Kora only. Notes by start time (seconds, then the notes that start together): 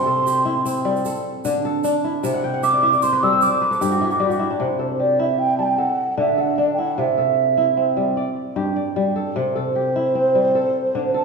Already playing: C3 G4 D5
0.06 A4
0.27 G4
0.45 E4
0.65 C4
0.85 G3
1.06 A4
1.45 D3 D4
1.65 A4
1.84 D4
2.04 E4
2.23 C3 E5
2.34 F#5
2.44 G5
2.54 F#5
2.63 E5
2.73 D5
2.83 E4 E5
2.93 D5
3.03 C5
3.12 B4
3.23 G3 A4
3.32 C5
3.42 D5
3.52 C5
3.62 B4
3.71 A4
3.81 G2 G4
3.91 F#4
4.01 E4
4.11 F#4
4.20 G3 G4
4.30 F#4
4.39 E4
4.50 D4
4.60 C3
4.79 A4
5.00 G4
5.19 E4
5.59 G3
5.78 A4
6.17 D3 D4
6.38 A4
6.58 D4
6.78 E4
6.98 C3
7.18 A4
7.57 E4
7.77 C4
7.97 G3
8.17 D5
8.56 G2 G4
8.76 D5
8.96 G3
9.16 A4
9.36 C3
9.55 A4
9.76 G4
9.96 E4
10.15 C4
10.35 G3
10.55 A4
10.95 D3 D4
11.14 A4